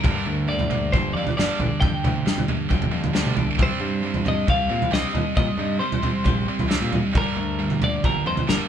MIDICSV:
0, 0, Header, 1, 6, 480
1, 0, Start_track
1, 0, Key_signature, -3, "minor"
1, 0, Tempo, 444115
1, 53, Time_signature, 4, 2, 24, 8
1, 9384, End_track
2, 0, Start_track
2, 0, Title_t, "Clean electric guitar"
2, 0, Program_c, 0, 27
2, 0, Note_on_c, 0, 70, 80
2, 525, Note_on_c, 0, 74, 79
2, 559, Note_off_c, 0, 70, 0
2, 1000, Note_on_c, 0, 72, 83
2, 1022, Note_off_c, 0, 74, 0
2, 1226, Note_on_c, 0, 74, 86
2, 1252, Note_off_c, 0, 72, 0
2, 1460, Note_off_c, 0, 74, 0
2, 1483, Note_on_c, 0, 74, 84
2, 1947, Note_off_c, 0, 74, 0
2, 1952, Note_on_c, 0, 79, 85
2, 2637, Note_off_c, 0, 79, 0
2, 3920, Note_on_c, 0, 72, 86
2, 4629, Note_on_c, 0, 75, 92
2, 4644, Note_off_c, 0, 72, 0
2, 4842, Note_off_c, 0, 75, 0
2, 4860, Note_on_c, 0, 77, 96
2, 5328, Note_off_c, 0, 77, 0
2, 5332, Note_on_c, 0, 75, 82
2, 5790, Note_off_c, 0, 75, 0
2, 5803, Note_on_c, 0, 75, 97
2, 6258, Note_off_c, 0, 75, 0
2, 6262, Note_on_c, 0, 72, 71
2, 7192, Note_off_c, 0, 72, 0
2, 7755, Note_on_c, 0, 70, 89
2, 8468, Note_off_c, 0, 70, 0
2, 8473, Note_on_c, 0, 74, 98
2, 8698, Note_off_c, 0, 74, 0
2, 8702, Note_on_c, 0, 70, 88
2, 8936, Note_off_c, 0, 70, 0
2, 8940, Note_on_c, 0, 72, 93
2, 9173, Note_off_c, 0, 72, 0
2, 9178, Note_on_c, 0, 70, 82
2, 9384, Note_off_c, 0, 70, 0
2, 9384, End_track
3, 0, Start_track
3, 0, Title_t, "Clean electric guitar"
3, 0, Program_c, 1, 27
3, 0, Note_on_c, 1, 55, 72
3, 0, Note_on_c, 1, 67, 76
3, 40, Note_on_c, 1, 43, 71
3, 290, Note_on_c, 1, 50, 74
3, 532, Note_off_c, 1, 55, 0
3, 536, Note_on_c, 1, 55, 66
3, 765, Note_on_c, 1, 58, 76
3, 992, Note_off_c, 1, 67, 0
3, 997, Note_on_c, 1, 67, 77
3, 1237, Note_off_c, 1, 58, 0
3, 1244, Note_off_c, 1, 43, 0
3, 1250, Note_on_c, 1, 58, 63
3, 1479, Note_off_c, 1, 55, 0
3, 1484, Note_on_c, 1, 55, 73
3, 1489, Note_off_c, 1, 50, 0
3, 1728, Note_on_c, 1, 62, 60
3, 1964, Note_on_c, 1, 43, 73
3, 2219, Note_on_c, 1, 50, 67
3, 2440, Note_off_c, 1, 55, 0
3, 2445, Note_on_c, 1, 55, 67
3, 2449, Note_off_c, 1, 58, 0
3, 2682, Note_on_c, 1, 58, 72
3, 2915, Note_off_c, 1, 67, 0
3, 2919, Note_on_c, 1, 67, 79
3, 2927, Note_off_c, 1, 62, 0
3, 3148, Note_off_c, 1, 58, 0
3, 3161, Note_on_c, 1, 58, 66
3, 3165, Note_off_c, 1, 43, 0
3, 3385, Note_off_c, 1, 55, 0
3, 3389, Note_on_c, 1, 55, 73
3, 3413, Note_off_c, 1, 50, 0
3, 3633, Note_on_c, 1, 62, 60
3, 3880, Note_off_c, 1, 62, 0
3, 3881, Note_on_c, 1, 48, 76
3, 3884, Note_off_c, 1, 58, 0
3, 4117, Note_off_c, 1, 55, 0
3, 4121, Note_on_c, 1, 55, 69
3, 4352, Note_off_c, 1, 55, 0
3, 4357, Note_on_c, 1, 55, 66
3, 4614, Note_on_c, 1, 60, 70
3, 4845, Note_off_c, 1, 67, 0
3, 4849, Note_on_c, 1, 67, 77
3, 5072, Note_off_c, 1, 60, 0
3, 5084, Note_off_c, 1, 48, 0
3, 5085, Note_on_c, 1, 60, 70
3, 5326, Note_off_c, 1, 55, 0
3, 5330, Note_on_c, 1, 55, 73
3, 5560, Note_on_c, 1, 63, 61
3, 5796, Note_on_c, 1, 48, 75
3, 6042, Note_off_c, 1, 55, 0
3, 6046, Note_on_c, 1, 55, 67
3, 6281, Note_off_c, 1, 55, 0
3, 6286, Note_off_c, 1, 60, 0
3, 6286, Note_on_c, 1, 55, 69
3, 6528, Note_on_c, 1, 60, 70
3, 6764, Note_off_c, 1, 63, 0
3, 6774, Note_off_c, 1, 67, 0
3, 6778, Note_on_c, 1, 67, 80
3, 6996, Note_off_c, 1, 60, 0
3, 7002, Note_off_c, 1, 48, 0
3, 7009, Note_on_c, 1, 60, 70
3, 7246, Note_off_c, 1, 55, 0
3, 7250, Note_on_c, 1, 55, 76
3, 7499, Note_on_c, 1, 63, 65
3, 7729, Note_off_c, 1, 60, 0
3, 7730, Note_on_c, 1, 43, 71
3, 7734, Note_off_c, 1, 63, 0
3, 7967, Note_on_c, 1, 50, 69
3, 8192, Note_off_c, 1, 55, 0
3, 8196, Note_on_c, 1, 55, 70
3, 8450, Note_on_c, 1, 58, 66
3, 8682, Note_off_c, 1, 67, 0
3, 8686, Note_on_c, 1, 67, 77
3, 8928, Note_off_c, 1, 58, 0
3, 8932, Note_off_c, 1, 43, 0
3, 8932, Note_on_c, 1, 58, 68
3, 9160, Note_off_c, 1, 55, 0
3, 9170, Note_off_c, 1, 50, 0
3, 9173, Note_on_c, 1, 55, 74
3, 9384, Note_off_c, 1, 55, 0
3, 9384, Note_off_c, 1, 58, 0
3, 9384, Note_off_c, 1, 67, 0
3, 9384, End_track
4, 0, Start_track
4, 0, Title_t, "Distorted electric guitar"
4, 0, Program_c, 2, 30
4, 39, Note_on_c, 2, 43, 90
4, 48, Note_on_c, 2, 50, 87
4, 48, Note_on_c, 2, 55, 81
4, 271, Note_off_c, 2, 43, 0
4, 276, Note_off_c, 2, 50, 0
4, 276, Note_off_c, 2, 55, 0
4, 286, Note_on_c, 2, 43, 63
4, 289, Note_on_c, 2, 50, 70
4, 505, Note_off_c, 2, 43, 0
4, 506, Note_off_c, 2, 50, 0
4, 522, Note_on_c, 2, 50, 83
4, 526, Note_on_c, 2, 43, 74
4, 743, Note_off_c, 2, 50, 0
4, 745, Note_off_c, 2, 43, 0
4, 757, Note_on_c, 2, 43, 69
4, 762, Note_on_c, 2, 50, 74
4, 980, Note_off_c, 2, 43, 0
4, 982, Note_off_c, 2, 50, 0
4, 1014, Note_on_c, 2, 50, 81
4, 1016, Note_on_c, 2, 43, 70
4, 1228, Note_off_c, 2, 50, 0
4, 1229, Note_off_c, 2, 43, 0
4, 1261, Note_on_c, 2, 43, 63
4, 1272, Note_on_c, 2, 50, 65
4, 1471, Note_off_c, 2, 43, 0
4, 1477, Note_off_c, 2, 50, 0
4, 1490, Note_on_c, 2, 43, 85
4, 1500, Note_on_c, 2, 50, 82
4, 1502, Note_on_c, 2, 55, 90
4, 1715, Note_off_c, 2, 43, 0
4, 1715, Note_off_c, 2, 50, 0
4, 1721, Note_off_c, 2, 55, 0
4, 1727, Note_on_c, 2, 43, 74
4, 1728, Note_on_c, 2, 50, 83
4, 1944, Note_off_c, 2, 43, 0
4, 1945, Note_off_c, 2, 50, 0
4, 1968, Note_on_c, 2, 43, 67
4, 1971, Note_on_c, 2, 50, 81
4, 2185, Note_off_c, 2, 43, 0
4, 2186, Note_off_c, 2, 50, 0
4, 2205, Note_on_c, 2, 43, 59
4, 2209, Note_on_c, 2, 50, 64
4, 2423, Note_off_c, 2, 43, 0
4, 2425, Note_off_c, 2, 50, 0
4, 2440, Note_on_c, 2, 43, 70
4, 2456, Note_on_c, 2, 50, 75
4, 2660, Note_off_c, 2, 43, 0
4, 2668, Note_off_c, 2, 50, 0
4, 2690, Note_on_c, 2, 43, 71
4, 2692, Note_on_c, 2, 50, 77
4, 2893, Note_off_c, 2, 43, 0
4, 2906, Note_off_c, 2, 50, 0
4, 2906, Note_on_c, 2, 43, 75
4, 2920, Note_on_c, 2, 50, 76
4, 3133, Note_off_c, 2, 43, 0
4, 3140, Note_off_c, 2, 50, 0
4, 3150, Note_on_c, 2, 43, 61
4, 3159, Note_on_c, 2, 50, 76
4, 3375, Note_off_c, 2, 43, 0
4, 3376, Note_off_c, 2, 50, 0
4, 3389, Note_on_c, 2, 50, 78
4, 3390, Note_on_c, 2, 43, 82
4, 3394, Note_on_c, 2, 55, 83
4, 3624, Note_off_c, 2, 43, 0
4, 3624, Note_off_c, 2, 50, 0
4, 3627, Note_off_c, 2, 55, 0
4, 3641, Note_on_c, 2, 43, 73
4, 3645, Note_on_c, 2, 50, 68
4, 3860, Note_off_c, 2, 43, 0
4, 3862, Note_off_c, 2, 50, 0
4, 3869, Note_on_c, 2, 55, 87
4, 3871, Note_on_c, 2, 60, 87
4, 3872, Note_on_c, 2, 48, 86
4, 4104, Note_off_c, 2, 55, 0
4, 4105, Note_off_c, 2, 48, 0
4, 4105, Note_off_c, 2, 60, 0
4, 4121, Note_on_c, 2, 48, 55
4, 4124, Note_on_c, 2, 55, 74
4, 4340, Note_off_c, 2, 48, 0
4, 4342, Note_off_c, 2, 55, 0
4, 4356, Note_on_c, 2, 48, 67
4, 4364, Note_on_c, 2, 55, 75
4, 4577, Note_off_c, 2, 48, 0
4, 4582, Note_off_c, 2, 55, 0
4, 4594, Note_on_c, 2, 48, 67
4, 4600, Note_on_c, 2, 55, 78
4, 4816, Note_off_c, 2, 48, 0
4, 4820, Note_off_c, 2, 55, 0
4, 4835, Note_on_c, 2, 48, 72
4, 4842, Note_on_c, 2, 55, 88
4, 5057, Note_off_c, 2, 48, 0
4, 5061, Note_off_c, 2, 55, 0
4, 5076, Note_on_c, 2, 48, 60
4, 5082, Note_on_c, 2, 55, 62
4, 5295, Note_off_c, 2, 48, 0
4, 5298, Note_off_c, 2, 55, 0
4, 5308, Note_on_c, 2, 48, 84
4, 5308, Note_on_c, 2, 60, 100
4, 5311, Note_on_c, 2, 55, 80
4, 5543, Note_off_c, 2, 48, 0
4, 5543, Note_off_c, 2, 60, 0
4, 5545, Note_off_c, 2, 55, 0
4, 5556, Note_on_c, 2, 48, 74
4, 5560, Note_on_c, 2, 55, 76
4, 5774, Note_off_c, 2, 48, 0
4, 5779, Note_off_c, 2, 55, 0
4, 5787, Note_on_c, 2, 48, 66
4, 5793, Note_on_c, 2, 55, 75
4, 6013, Note_off_c, 2, 48, 0
4, 6016, Note_off_c, 2, 55, 0
4, 6042, Note_on_c, 2, 48, 63
4, 6048, Note_on_c, 2, 55, 66
4, 6261, Note_off_c, 2, 48, 0
4, 6264, Note_off_c, 2, 55, 0
4, 6276, Note_on_c, 2, 48, 68
4, 6283, Note_on_c, 2, 55, 75
4, 6497, Note_off_c, 2, 48, 0
4, 6501, Note_off_c, 2, 55, 0
4, 6513, Note_on_c, 2, 48, 69
4, 6523, Note_on_c, 2, 55, 79
4, 6734, Note_off_c, 2, 55, 0
4, 6736, Note_off_c, 2, 48, 0
4, 6747, Note_on_c, 2, 55, 87
4, 6751, Note_on_c, 2, 48, 75
4, 6973, Note_off_c, 2, 55, 0
4, 6975, Note_off_c, 2, 48, 0
4, 7005, Note_on_c, 2, 48, 62
4, 7006, Note_on_c, 2, 55, 75
4, 7209, Note_off_c, 2, 48, 0
4, 7216, Note_off_c, 2, 55, 0
4, 7222, Note_on_c, 2, 48, 86
4, 7229, Note_on_c, 2, 55, 87
4, 7238, Note_on_c, 2, 60, 91
4, 7457, Note_off_c, 2, 48, 0
4, 7464, Note_off_c, 2, 55, 0
4, 7469, Note_off_c, 2, 60, 0
4, 7470, Note_on_c, 2, 48, 67
4, 7482, Note_on_c, 2, 55, 76
4, 7695, Note_off_c, 2, 48, 0
4, 7702, Note_off_c, 2, 55, 0
4, 7707, Note_on_c, 2, 43, 83
4, 7719, Note_on_c, 2, 50, 98
4, 7724, Note_on_c, 2, 55, 88
4, 7944, Note_off_c, 2, 43, 0
4, 7950, Note_off_c, 2, 50, 0
4, 7952, Note_off_c, 2, 55, 0
4, 7955, Note_on_c, 2, 43, 59
4, 7961, Note_on_c, 2, 50, 73
4, 8178, Note_off_c, 2, 43, 0
4, 8182, Note_off_c, 2, 50, 0
4, 8202, Note_on_c, 2, 43, 69
4, 8208, Note_on_c, 2, 50, 72
4, 8422, Note_off_c, 2, 43, 0
4, 8425, Note_off_c, 2, 50, 0
4, 8449, Note_on_c, 2, 43, 64
4, 8461, Note_on_c, 2, 50, 80
4, 8666, Note_off_c, 2, 43, 0
4, 8672, Note_off_c, 2, 50, 0
4, 8695, Note_on_c, 2, 43, 75
4, 8698, Note_on_c, 2, 50, 81
4, 8909, Note_off_c, 2, 43, 0
4, 8911, Note_off_c, 2, 50, 0
4, 8929, Note_on_c, 2, 50, 76
4, 8932, Note_on_c, 2, 43, 61
4, 9144, Note_off_c, 2, 43, 0
4, 9147, Note_off_c, 2, 50, 0
4, 9157, Note_on_c, 2, 43, 85
4, 9163, Note_on_c, 2, 50, 91
4, 9164, Note_on_c, 2, 55, 92
4, 9384, Note_off_c, 2, 43, 0
4, 9384, Note_off_c, 2, 50, 0
4, 9384, Note_off_c, 2, 55, 0
4, 9384, End_track
5, 0, Start_track
5, 0, Title_t, "Picked electric bass"
5, 0, Program_c, 3, 34
5, 45, Note_on_c, 3, 31, 101
5, 159, Note_off_c, 3, 31, 0
5, 284, Note_on_c, 3, 38, 94
5, 964, Note_off_c, 3, 38, 0
5, 1006, Note_on_c, 3, 31, 93
5, 1228, Note_off_c, 3, 31, 0
5, 1238, Note_on_c, 3, 41, 90
5, 1354, Note_off_c, 3, 41, 0
5, 1488, Note_on_c, 3, 31, 93
5, 1599, Note_off_c, 3, 31, 0
5, 1722, Note_on_c, 3, 34, 92
5, 1835, Note_off_c, 3, 34, 0
5, 1963, Note_on_c, 3, 41, 93
5, 2076, Note_off_c, 3, 41, 0
5, 2209, Note_on_c, 3, 38, 104
5, 2429, Note_off_c, 3, 38, 0
5, 2924, Note_on_c, 3, 29, 82
5, 3146, Note_off_c, 3, 29, 0
5, 3165, Note_on_c, 3, 41, 81
5, 3382, Note_off_c, 3, 41, 0
5, 3403, Note_on_c, 3, 38, 83
5, 3621, Note_off_c, 3, 38, 0
5, 3648, Note_on_c, 3, 36, 79
5, 3864, Note_off_c, 3, 36, 0
5, 3880, Note_on_c, 3, 36, 110
5, 3994, Note_off_c, 3, 36, 0
5, 4108, Note_on_c, 3, 43, 88
5, 4794, Note_off_c, 3, 43, 0
5, 4841, Note_on_c, 3, 36, 83
5, 5064, Note_off_c, 3, 36, 0
5, 5079, Note_on_c, 3, 46, 87
5, 5193, Note_off_c, 3, 46, 0
5, 5316, Note_on_c, 3, 36, 97
5, 5431, Note_off_c, 3, 36, 0
5, 5562, Note_on_c, 3, 39, 98
5, 5674, Note_off_c, 3, 39, 0
5, 5799, Note_on_c, 3, 46, 91
5, 5913, Note_off_c, 3, 46, 0
5, 6028, Note_on_c, 3, 43, 102
5, 6257, Note_off_c, 3, 43, 0
5, 6759, Note_on_c, 3, 34, 81
5, 6983, Note_off_c, 3, 34, 0
5, 7126, Note_on_c, 3, 36, 93
5, 7347, Note_off_c, 3, 36, 0
5, 7359, Note_on_c, 3, 46, 84
5, 7584, Note_off_c, 3, 46, 0
5, 7726, Note_on_c, 3, 31, 103
5, 7837, Note_off_c, 3, 31, 0
5, 7960, Note_on_c, 3, 38, 98
5, 8643, Note_off_c, 3, 38, 0
5, 8693, Note_on_c, 3, 31, 97
5, 8912, Note_off_c, 3, 31, 0
5, 8925, Note_on_c, 3, 41, 87
5, 9038, Note_off_c, 3, 41, 0
5, 9168, Note_on_c, 3, 31, 93
5, 9280, Note_off_c, 3, 31, 0
5, 9384, End_track
6, 0, Start_track
6, 0, Title_t, "Drums"
6, 40, Note_on_c, 9, 43, 80
6, 49, Note_on_c, 9, 36, 112
6, 149, Note_off_c, 9, 43, 0
6, 157, Note_off_c, 9, 36, 0
6, 640, Note_on_c, 9, 43, 73
6, 749, Note_off_c, 9, 43, 0
6, 765, Note_on_c, 9, 43, 82
6, 873, Note_off_c, 9, 43, 0
6, 1010, Note_on_c, 9, 36, 93
6, 1012, Note_on_c, 9, 43, 78
6, 1119, Note_off_c, 9, 36, 0
6, 1120, Note_off_c, 9, 43, 0
6, 1370, Note_on_c, 9, 43, 76
6, 1478, Note_off_c, 9, 43, 0
6, 1505, Note_on_c, 9, 38, 75
6, 1613, Note_off_c, 9, 38, 0
6, 1728, Note_on_c, 9, 43, 73
6, 1836, Note_off_c, 9, 43, 0
6, 1958, Note_on_c, 9, 43, 78
6, 1967, Note_on_c, 9, 36, 105
6, 2066, Note_off_c, 9, 43, 0
6, 2075, Note_off_c, 9, 36, 0
6, 2212, Note_on_c, 9, 43, 80
6, 2212, Note_on_c, 9, 47, 79
6, 2320, Note_off_c, 9, 43, 0
6, 2320, Note_off_c, 9, 47, 0
6, 2453, Note_on_c, 9, 38, 67
6, 2561, Note_off_c, 9, 38, 0
6, 2572, Note_on_c, 9, 43, 78
6, 2680, Note_off_c, 9, 43, 0
6, 2684, Note_on_c, 9, 43, 84
6, 2792, Note_off_c, 9, 43, 0
6, 2921, Note_on_c, 9, 43, 72
6, 2927, Note_on_c, 9, 36, 91
6, 3029, Note_off_c, 9, 43, 0
6, 3036, Note_off_c, 9, 36, 0
6, 3047, Note_on_c, 9, 43, 82
6, 3156, Note_off_c, 9, 43, 0
6, 3283, Note_on_c, 9, 43, 82
6, 3391, Note_off_c, 9, 43, 0
6, 3403, Note_on_c, 9, 38, 71
6, 3511, Note_off_c, 9, 38, 0
6, 3521, Note_on_c, 9, 47, 67
6, 3629, Note_off_c, 9, 47, 0
6, 3639, Note_on_c, 9, 43, 78
6, 3747, Note_off_c, 9, 43, 0
6, 3879, Note_on_c, 9, 43, 77
6, 3883, Note_on_c, 9, 36, 105
6, 3987, Note_off_c, 9, 43, 0
6, 3991, Note_off_c, 9, 36, 0
6, 4476, Note_on_c, 9, 43, 73
6, 4584, Note_off_c, 9, 43, 0
6, 4605, Note_on_c, 9, 43, 90
6, 4713, Note_off_c, 9, 43, 0
6, 4845, Note_on_c, 9, 36, 100
6, 4845, Note_on_c, 9, 43, 81
6, 4953, Note_off_c, 9, 36, 0
6, 4953, Note_off_c, 9, 43, 0
6, 5211, Note_on_c, 9, 43, 76
6, 5319, Note_off_c, 9, 43, 0
6, 5334, Note_on_c, 9, 38, 76
6, 5442, Note_off_c, 9, 38, 0
6, 5565, Note_on_c, 9, 43, 76
6, 5673, Note_off_c, 9, 43, 0
6, 5803, Note_on_c, 9, 36, 111
6, 5803, Note_on_c, 9, 43, 85
6, 5911, Note_off_c, 9, 36, 0
6, 5911, Note_off_c, 9, 43, 0
6, 6402, Note_on_c, 9, 43, 79
6, 6510, Note_off_c, 9, 43, 0
6, 6520, Note_on_c, 9, 43, 85
6, 6628, Note_off_c, 9, 43, 0
6, 6756, Note_on_c, 9, 43, 71
6, 6764, Note_on_c, 9, 36, 93
6, 6864, Note_off_c, 9, 43, 0
6, 6872, Note_off_c, 9, 36, 0
6, 7126, Note_on_c, 9, 43, 78
6, 7234, Note_off_c, 9, 43, 0
6, 7248, Note_on_c, 9, 38, 78
6, 7356, Note_off_c, 9, 38, 0
6, 7486, Note_on_c, 9, 43, 85
6, 7594, Note_off_c, 9, 43, 0
6, 7730, Note_on_c, 9, 36, 109
6, 7732, Note_on_c, 9, 43, 80
6, 7838, Note_off_c, 9, 36, 0
6, 7840, Note_off_c, 9, 43, 0
6, 8324, Note_on_c, 9, 43, 74
6, 8432, Note_off_c, 9, 43, 0
6, 8449, Note_on_c, 9, 43, 93
6, 8557, Note_off_c, 9, 43, 0
6, 8691, Note_on_c, 9, 36, 102
6, 8692, Note_on_c, 9, 43, 80
6, 8799, Note_off_c, 9, 36, 0
6, 8800, Note_off_c, 9, 43, 0
6, 9049, Note_on_c, 9, 43, 74
6, 9157, Note_off_c, 9, 43, 0
6, 9174, Note_on_c, 9, 38, 77
6, 9282, Note_off_c, 9, 38, 0
6, 9384, End_track
0, 0, End_of_file